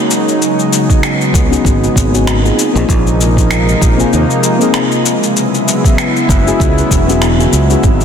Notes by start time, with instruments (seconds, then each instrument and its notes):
Already playing: analog synth pad C#3 F#3 G#3 A#3 D#4, fm electric piano A#3 C#4 D#4 F#4 G#4
0.11 shaker
0.28 shaker
0.41 analog synth pad G#3 B3, shaker
0.59 shaker
0.73 shaker
0.90 kick, shaker
1.03 finger snap, shaker
1.21 shaker
1.34 fingered electric bass C#2, kick, shaker
1.49 fm electric piano B3 C#4 D#4 F#4 G#4, shaker
1.65 fingered electric bass G#1, kick, shaker
1.84 shaker
1.96 fingered electric bass G#1, kick, shaker
2.12 fm electric piano B3 C#4 D#4 F#4 G#4, shaker
2.27 finger snap, shaker
2.42 fm electric piano A#3 C4 D#4 F4 G#4, shaker
2.58 analog synth pad C3 F3 G#3 A#3 D#4, shaker
2.73 fingered electric bass A#1, fm electric piano A#3 C4 D#4 F4 G#4, shaker
2.88 fingered electric bass A#1, kick, shaker
3.07 shaker
3.21 shaker
3.37 kick, shaker
3.51 finger snap, shaker
3.69 shaker
3.81 fingered electric bass A#1, kick, shaker
3.96 fm electric piano A#3 C4 D#4 F4 G#4, shaker
4.13 fingered electric bass D#2, shaker
4.30 shaker
4.43 shaker
4.59 fm electric piano A#3 C4 D#4 F4 G#4, shaker
4.74 finger snap, shaker
4.92 shaker
5.05 analog synth pad C#3 F#3 B3 E4, shaker
5.23 shaker
5.37 shaker
5.54 shaker
5.68 shaker
5.85 kick, shaker
5.98 finger snap, shaker
6.16 shaker
6.29 fingered electric bass F#1, kick, shaker
6.44 fm electric piano B3 C#4 E4 F#4 G#4, shaker
6.60 fingered electric bass C#2, kick, shaker
6.78 shaker
6.91 fingered electric bass E1, kick, shaker
7.07 fm electric piano B3 C#4 E4 F#4 G#4, shaker
7.22 finger snap, shaker
7.37 fm electric piano B3 C#4 E4 F#4 G#4, shaker
7.53 fingered electric bass C#2, shaker
7.68 fm electric piano B3 C#4 E4 F#4 G#4, shaker
7.83 fingered electric bass G#1, analog synth pad A#3 D#4, kick, shaker
8.01 shaker